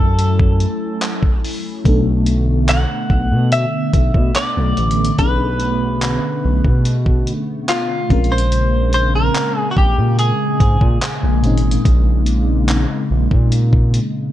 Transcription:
Already playing: F#2 F#3 A3 C#4 E4 A4 G#5
0.19 closed hi-hat
0.39 kick
0.60 closed hi-hat
1.02 clap, closed hi-hat
1.23 kick
1.45 open hi-hat
1.84 B1 B2 D3 A3 B3 D4, kick, closed hi-hat
1.88 A4
2.26 closed hi-hat
2.69 F#5, clap, closed hi-hat
3.10 B1, kick
3.32 B2
3.52 E5, closed hi-hat
3.93 B1, kick, closed hi-hat
4.14 B2, kick
4.35 D5, clap, closed hi-hat
4.57 B1
4.77 A1, closed hi-hat
4.91 closed hi-hat
5.05 closed hi-hat
5.17 B1 B2 B3 C#4 D4 B4, kick, closed hi-hat
5.22 G#4
5.60 closed hi-hat
6.02 clap, closed hi-hat
6.45 B1
6.65 B2, kick
6.85 closed hi-hat
7.06 kick
7.27 closed hi-hat
7.69 F4, clap, closed hi-hat
8.09 A#1 A#2 C#3 G#3 A#3 C4 C#4, kick, closed hi-hat
8.13 A#4
8.24 closed hi-hat
8.32 C5
8.38 closed hi-hat
8.52 closed hi-hat
8.93 C5, closed hi-hat
9.15 A#4
9.35 clap, closed hi-hat
9.58 G#4
9.71 F#4
9.77 A#1 G4, kick
9.98 A#2
10.19 G#4, closed hi-hat
10.60 G#2, kick, closed hi-hat
10.81 A#2, kick
11.02 clap, closed hi-hat
11.23 A#1
11.42 G#1 A#2 G#3 C4 C#4, closed hi-hat
11.47 D#4
11.58 closed hi-hat
11.71 closed hi-hat
11.85 A#1, kick, closed hi-hat
12.26 closed hi-hat
12.69 clap, closed hi-hat
13.10 A#1
13.31 A#2, kick
13.52 closed hi-hat
13.73 kick
13.94 closed hi-hat

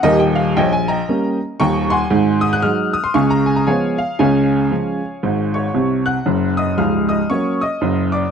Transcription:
0.03 D#1 D#2 G4 A#4 D#5
0.20 G5
0.35 F5
0.57 A#1 C#5 D#5 G5
0.73 G#5
0.88 D#5 G5 A#5
1.09 G3 A#3 C#4
1.60 D#1 D#2 G5 A#5 C#6
1.90 F#5 G#5 C6
2.10 G#1 G#2
2.41 D#6
2.53 F#6
2.62 F#3 G#3 D#4 F6
2.94 D#6
3.04 C6
3.14 C#2 C#3 F5 G#5 C#6
3.30 A#5
3.46 G#5
3.56 A#5
3.67 F3 G#3 B3 C#5 F5 G#5
3.98 F5
4.19 C#2 C#3 C#5 F5 G#5
4.71 F3 G#3 C#4
5.23 G#1 G#2
5.54 C#5 C#6
5.74 C2 C3
6.06 F#5 F#6
6.26 F#1 F#2
6.57 D#5 D#6
6.78 C#1 C#2 F5 F6
7.09 D#5 D#6
7.30 F#3 A#3 C#4 C#5 C#6
7.61 D#5 D#6
7.81 F#1 F#2
8.12 D5 D6

